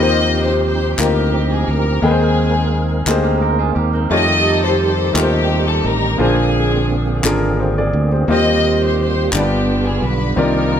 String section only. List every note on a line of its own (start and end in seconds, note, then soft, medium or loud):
0.00 0.95 G4 medium
0.00 0.45 C5 medium
0.00 0.43 D#5 loud
0.47 0.64 C5 medium
0.65 0.97 C5 medium
1.00 2.00 A#3 medium
1.00 2.00 C4 medium
1.00 1.51 G4 medium
1.52 1.69 G#4 medium
1.69 2.03 A#4 medium
2.05 3.05 C4 medium
2.05 3.08 G#4 medium
4.14 5.13 G4 medium
4.14 5.13 A4 medium
4.14 4.61 D#5 loud
4.65 4.81 C5 loud
4.83 5.14 C5 medium
5.16 6.16 C4 medium
5.16 6.16 D#4 medium
5.16 5.68 G4 loud
5.68 5.85 A4 medium
5.87 6.21 A#4 medium
6.22 7.21 C4 medium
6.22 7.21 D4 medium
6.22 7.21 G#4 medium
8.30 9.30 G4 medium
8.30 8.84 C5 medium
8.30 8.79 D#5 loud
8.85 8.99 C5 medium
9.01 9.32 C5 medium
9.35 10.34 B3 medium
9.35 10.34 D4 medium
9.35 9.86 G4 medium
9.86 10.03 G#4 medium
10.03 10.37 B4 medium
10.39 10.80 D4 medium
10.39 10.80 D#4 medium
10.39 10.80 A#4 medium